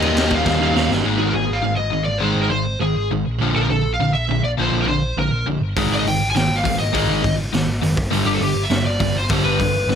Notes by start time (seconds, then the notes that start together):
Already playing: D#3 G3 A#3 C#4 D#4 G4 D#5
0.02 D#2, crash
0.16 D#2, snare, crash
0.30 kick, crash
0.35 F5
0.46 D#2, kick, snare
0.60 D#2 D#3 G3 A#3 D#4 F5
0.73 D#2 D#3 G3 A#3 D#4, snare
0.90 G1, snare
1.02 G#1 G#2 D#3 G#3
1.18 G#1 G#4
1.27 A#4
1.34 G#1 G#2 D#3 G#4
1.50 G#1 F5
1.64 G#1 G#2 D#3
1.76 G#1 D#5
1.92 G#1 G#2 D#3
2.04 G#1 D5
2.18 G#1 C5
2.23 G#2 D#3 G#3
2.36 G#1
2.42 A#4
2.50 G#1 G#2 D#3 C5
2.80 G#1 G#2 D#3 G#4
2.97 G#1
3.11 G#1 G#2 D#3
3.27 A#1
3.38 A#1 A#2 D3 F3
3.56 A#1 A4
3.61 A#4
3.70 A#1 A#2 D3 A4
3.85 A#1
3.94 F5
4.00 A#1 A#2 D3
4.14 A#1 E5
4.28 A#1 A#2 D3
4.43 A#1 D5
4.58 A#1 A#2 D3 F3
4.62 C5
4.72 A#1
4.81 A#4
4.87 A#1 A#2 D3 C5
5.17 A#1 A#2 D3 A#4
5.31 A#1
5.46 A#1 A#2 D3
5.60 G1
5.76 G#1 G#2 D#3 G#3, kick, open hi-hat
5.89 G#1
5.94 D5
5.99 D#5
6.04 G#1 G#2 D#3 G5, open hi-hat
6.19 G#1
6.30 G#5
6.35 G#1 G#2 D#3 G5, snare, open hi-hat
6.49 G#1
6.56 F5
6.64 G#1 G#2 D#3, kick, open hi-hat
6.79 G#1 D#5
6.93 G#1 G#2 D#3 G#3, kick, open hi-hat
7.09 G#1
7.24 G#1 G#2 D#3, kick, open hi-hat
7.54 G#1 G#2 D#3, snare, open hi-hat
7.69 G#1
7.82 F#1 G#2 D#3, open hi-hat
7.97 G1, kick
8.11 G1 G2 D3 G3, open hi-hat
8.26 G1 G4
8.33 A4
8.40 G1 G2 D3 G4, open hi-hat
8.55 G1
8.63 E5
8.70 G1 G2 D3, snare, open hi-hat
8.85 G1 D5
9.00 G1 G2 D3, kick, open hi-hat
9.15 G1 C5
9.29 G1 G2 D3, kick, open hi-hat
9.33 G3
9.44 G1 B4
9.59 G1 G2 D3, kick, open hi-hat
9.87 G1 G2 D3, snare